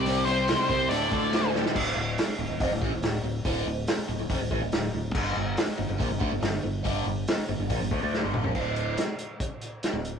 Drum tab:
CC |----------------|x---------------|----------------|x---------------|
HH |o-o-o-o-o-o-o---|----o---o---o---|o---o---o---o---|----o---o---o---|
SD |----o-------o-oo|----o-------o---|----o-------o---|----o-------o---|
T2 |----------------|----------------|----------------|----------------|
FT |----------------|----------------|----------------|----------------|
BD |------o---o-----|o-------o-o-----|o-------o-o-----|o-------o-o-----|

CC |----------------|x---------------|
HH |o---o---o-------|--x-x-x-x-x-x-x-|
SD |----o-------o---|----o-------o---|
T2 |--------------o-|----------------|
FT |---------------o|----------------|
BD |o-------o-o-----|o-------o-------|